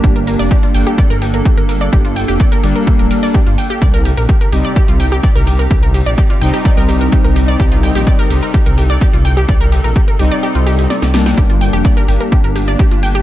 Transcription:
<<
  \new Staff \with { instrumentName = "Synth arpeggio sound" } { \time 4/4 \key c \dorian \tempo 4 = 127 g'16 bes'16 bes'16 d''16 g'16 f'16 g''16 g'16 d''16 bes'16 g'16 bes'16 g'16 bes'16 bes'16 d''16 | g'16 f'16 g''16 g'16 d''16 bes'16 g'16 bes'16 g'16 bes'16 bes'16 d''16 g'16 f'16 g''16 g'16 | d''16 bes'16 g'16 bes'16 g'16 bes'16 g'16 d''16 g'16 f'16 g''16 g'16 d''16 bes'16 g'16 bes'16 | g'16 bes'16 g'16 d''16 g'16 f'16 g''16 g'16 d''16 bes'16 g'16 bes'16 g'16 bes'16 g'16 d''16 |
g'16 f'16 g''16 g'16 d''16 bes'16 g'16 bes'16 g'16 bes'16 g'16 d''16 g'16 f'16 g''16 g'16 | d''16 bes'16 g'16 bes'16 g'16 bes'16 g'16 d''16 g'16 f'16 g'16 g'16 d''16 g'16 g'16 g''16 | g'16 f'16 g''16 g'16 d''16 bes'16 g'16 bes'16 g'16 bes'16 g'16 d''16 g'16 f'16 g''16 g'16 | }
  \new Staff \with { instrumentName = "Ambient pad" } { \time 4/4 \key c \dorian << { a'1~ | a'1 | g'1~ | g'1 |
a'1~ | a'1 | g'1 | } \\ { <bes d'>1~ | <bes d'>1 | <c c' ees'>1~ | <c c' ees'>1~ |
<c c' ees'>1~ | <c c' ees'>1 | <bes d'>1 | } >> }
  \new Staff \with { instrumentName = "Analog polysynth" } { \time 4/4 \key c \dorian <g bes d'>4. <g bes d'>8 r2 | r4. <g bes d'>4~ <g bes d'>16 <g bes d'>8 r8. | r4. <g c' ees'>8 r2 | r4. <g c' ees'>2~ <g c' ees'>8~ |
<g c' ees'>4. <g c' ees'>8 r2 | r4. <g c' ees'>4~ <g c' ees'>16 <g c' ees'>8 r16 <g bes d'>8~ | <g bes d'>4. <g bes d'>8 r2 | }
  \new Staff \with { instrumentName = "Detuned saw bass" } { \clef bass \time 4/4 \key c \dorian g,,8. f,,16 r8 g,,16 r8 g,,8. r16 g,,8. | g,,8. f,,16 r8 g,,16 r8 d,,16 r8. g,,16 r8 | c,8. bes,,16 r8 c,16 r8 c,8. r16 c,8. | c,8. bes,,16 r8 c,16 r8 c,8. r16 c,8. |
c,8. bes,,16 r8 c,16 r8 c,8. r16 c,8. | c,8. bes,,16 r8 c,16 r8 c,8. r16 c,8. | g,,8. f,,16 r8 g,,16 r8 g,,8. r16 g,,8. | }
  \new DrumStaff \with { instrumentName = "Drums" } \drummode { \time 4/4 <hh bd>16 hh16 hho16 hho16 <hh bd>16 hh16 hho16 hh16 <hh bd>16 hh16 hho16 hh16 <hh bd>16 hh16 hho16 hh16 | <hh bd>16 hh16 hho16 hho16 <hh bd>16 hh16 hho16 hh16 <hh bd>16 hh16 hho16 hho16 <hh bd>16 hh16 hho16 hh16 | <hh bd>16 hh16 hho16 hho16 <hh bd>16 hh16 hho16 hh16 <hh bd>16 hh16 hho16 hh16 <hh bd>16 hh16 hho16 hh16 | <hh bd>16 hh16 hho16 hh16 <hh bd>16 hh16 hho16 hh16 <hh bd>16 hh16 hho16 hh16 <hh bd>16 hh16 hho16 hh16 |
<hh bd>16 hh16 hho16 hho16 <hh bd>16 hh16 hho16 hh16 <hh bd>16 hh16 hho16 hh16 <hh bd>16 hh16 hho16 hh16 | <hh bd>16 hh16 hho16 hho16 <hh bd>16 hh16 hho16 hh16 hh16 hh16 hho16 hho16 <hh sn>16 <hh sn>16 <hho sn>16 <hh sn>16 | <hh bd>16 hh16 hho16 hho16 <hh bd>16 hh16 hho16 hh16 <hh bd>16 hh16 hho16 hh16 <hh bd>16 hh16 hho16 hh16 | }
>>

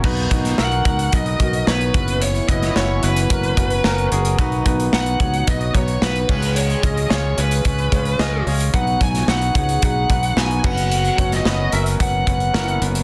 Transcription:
<<
  \new Staff \with { instrumentName = "Lead electric guitar" } { \time 4/4 \key b \major \tempo 4 = 110 r4 fis''4 dis''4 b'4 | cis''8 dis''8 cis''8 b'2 r8 | r4 fis''4 dis''8 cis''8 b'4 | cis''8 dis''8 cis''8 b'2 r8 |
fis''8 gis''8 fis''8 fis''8 fis''4 gis''8 fis''8~ | fis''8. dis''8. e''8 fis''8 fis''4 r8 | }
  \new Staff \with { instrumentName = "Grand piano" } { \time 4/4 \key b \major <b dis' fis' b'>8 <b dis' fis' b'>8 <b dis' fis' ais'>8 <b dis' fis' ais'>8 <b dis' fis' b'>8 <b dis' fis' ais'>8 <b dis' fis' cis''>8 <b cis' fis' b'>8~ | <b cis' fis' b'>8 <b cis' fis' b'>8 <b cis' fis' cis''>8 <b cis' fis' b'>8 <b cis' fis' ais'>8 <b cis' fis' b'>8 <b cis' fis' ais'>8 <b cis' fis' gis'>8 | <b dis' fis' b'>8 <b dis' fis' b'>8 <b dis' fis' b'>8 <b dis' fis' cis''>8 <b dis' fis' b'>8 <b dis' fis' b'>8 <b dis' fis' b'>8 <cis' eis' gis' cis''>8~ | <cis' eis' gis' cis''>8 <cis' eis' gis' cis''>8 <cis' eis' gis' cis''>8 <cis' eis' gis' cis''>8 <cis' eis' gis' cis''>8 <cis' eis' gis' cis''>8 <cis' eis' gis' dis''>8 <cis' eis' gis' cis''>8 |
<b dis' fis' b'>8 <b dis' fis' cis''>8 <b dis' fis' b'>8 <b dis' fis' cis''>8 <b dis' fis' b'>8 <b dis' fis' b'>8 <b dis' fis' b'>8 <b cis' fis' b'>8~ | <b cis' fis' b'>8 <b cis' fis' cis''>8 <b cis' fis' b'>8 <b cis' fis' ais'>8 <b cis' fis' b'>8 <b cis' fis' b'>8 <b cis' fis' ais'>8 <b cis' fis' b'>8 | }
  \new Staff \with { instrumentName = "Grand piano" } { \clef bass \time 4/4 \key b \major r2. r8 cis8~ | cis4 r2. | <b, fis>4. r2 <cis gis>8~ | <cis gis>4 r2. |
<b, fis>4. r2 cis8~ | cis4 r2. | }
  \new Staff \with { instrumentName = "French horn section" } { \time 4/4 \key b \major <dis dis'>2 r8 <fis fis'>8 r8 <e e'>8~ | <e e'>2.~ <e e'>8 r8 | <dis dis'>4 r8 <fis fis'>4. r8 <gis gis'>8~ | <gis gis'>2.~ <gis gis'>8 r8 |
<fis fis'>4 r8 <gis gis'>4. r8 <fis fis'>8~ | <fis fis'>2~ <fis fis'>8 r8 <e e'>8 r8 | }
  \new Staff \with { instrumentName = "Fingered electric bass" } { \clef bass \time 4/4 \key b \major b,,8 b,,8 b,,8 cis,8 b,,8 b,,8 b,,8 fis,,8~ | fis,,8 fis,,8 fis,,8 fis,,8 fis,,8 fis,,8 fis,,8 fis,,8 | b,,8 b,,8 b,,8 r8 b,,8 b,,8 b,,8 cis,8~ | cis,8 cis,8 cis,8 cis,8 cis,8 cis,8 cis,8 cis,8 |
b,,8 b,,8 b,,8 cis,8 b,,8 b,,8 b,,8 fis,,8~ | fis,,8 fis,,8 fis,,8 fis,,8 fis,,8 fis,,8 fis,,8 fis,,8 | }
  \new DrumStaff \with { instrumentName = "Drums" } \drummode { \time 4/4 <cymc bd>16 hh16 <hh bd>16 <hh sn>16 sn16 hh16 <hh bd>16 hh16 <hh bd>16 hh16 <hh bd>16 hh16 sn16 hh16 <hh bd>16 hh16 | hh16 hh16 <hh bd>16 <hh sn>16 sn8 hh16 hh16 <hh bd>16 hh16 <hh bd>16 hh16 sn16 hh16 hh16 hh16 | <hh bd>16 hh16 <hh bd>16 hh16 sn16 hh16 <hh bd>16 hh16 <hh bd>16 hh16 <hh bd>16 hh16 sn16 hh16 <cymc bd>16 hh16 | hh16 hh16 <hh bd>16 hh16 sn8 hh16 hh16 <hh bd>16 hh16 <hh bd>16 hh16 sn8 hho16 hh16 |
<hh bd>16 hh16 <hh bd>16 <hh sn>16 sn16 hh16 <hh bd>16 hh16 <hh bd>8 <hh bd>16 hh16 sn16 hh16 <cymc bd>16 hh16 | hh16 hh16 <hh bd>16 <hh sn>16 sn8 hh16 hh16 <hh bd>8 <hh bd>16 hh16 sn16 hh16 hh16 hh16 | }
>>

